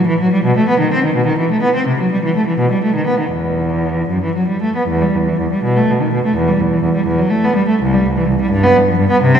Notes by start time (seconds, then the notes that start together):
0.07 E3
0.20 F#3
0.33 G3
0.45 B2
0.58 A3
0.68 B3
0.80 D#3
0.93 C4
1.05 D#3
1.15 B2
1.27 D#3
1.38 E3
1.51 A3
1.62 B3
1.75 C4
1.87 C3
2.00 F#3
2.12 G3
2.24 E3
2.36 A3
2.47 E3
2.59 B2
2.71 G3
2.84 A3
2.96 D#3
3.07 B3
3.20 D#3
3.33 E2
4.09 F#2
4.23 E3
4.36 F#3
4.48 G3
4.63 A3
4.76 B3
4.88 E2
5.02 G3
5.16 E2
5.29 E3
5.40 E2
5.53 G3
5.64 B2
5.77 A3
5.91 B2
6.02 D#3
6.13 B2
6.25 A3
6.36 E2
6.48 G3
6.60 E2
6.73 E3
6.83 E2
6.96 G3
7.07 E2
7.18 F#3
7.30 A3
7.44 B3
7.56 G3
7.68 A3
7.82 C2
7.94 G3
8.06 C2
8.18 E3
8.29 C2
8.42 G3
8.52 G2
8.64 B3
8.77 G2
8.88 F3
8.99 G2
9.11 B3
9.23 C3
9.35 C4